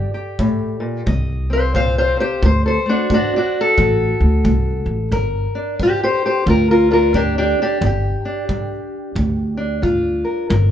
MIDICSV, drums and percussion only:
0, 0, Header, 1, 2, 480
1, 0, Start_track
1, 0, Key_signature, -2, "minor"
1, 0, Tempo, 674157
1, 1729, Time_signature, 4, 2, 24, 8
1, 7628, End_track
2, 0, Start_track
2, 0, Title_t, "Drums"
2, 278, Note_on_c, 9, 36, 73
2, 349, Note_off_c, 9, 36, 0
2, 761, Note_on_c, 9, 36, 68
2, 832, Note_off_c, 9, 36, 0
2, 1244, Note_on_c, 9, 36, 68
2, 1315, Note_off_c, 9, 36, 0
2, 1728, Note_on_c, 9, 36, 72
2, 1799, Note_off_c, 9, 36, 0
2, 2208, Note_on_c, 9, 36, 67
2, 2279, Note_off_c, 9, 36, 0
2, 2689, Note_on_c, 9, 36, 59
2, 2761, Note_off_c, 9, 36, 0
2, 3168, Note_on_c, 9, 36, 67
2, 3240, Note_off_c, 9, 36, 0
2, 3648, Note_on_c, 9, 36, 67
2, 3719, Note_off_c, 9, 36, 0
2, 4127, Note_on_c, 9, 36, 59
2, 4198, Note_off_c, 9, 36, 0
2, 4606, Note_on_c, 9, 36, 64
2, 4677, Note_off_c, 9, 36, 0
2, 5086, Note_on_c, 9, 36, 65
2, 5157, Note_off_c, 9, 36, 0
2, 5567, Note_on_c, 9, 36, 72
2, 5638, Note_off_c, 9, 36, 0
2, 6046, Note_on_c, 9, 36, 68
2, 6117, Note_off_c, 9, 36, 0
2, 6524, Note_on_c, 9, 36, 71
2, 6595, Note_off_c, 9, 36, 0
2, 7001, Note_on_c, 9, 36, 69
2, 7073, Note_off_c, 9, 36, 0
2, 7479, Note_on_c, 9, 36, 72
2, 7551, Note_off_c, 9, 36, 0
2, 7628, End_track
0, 0, End_of_file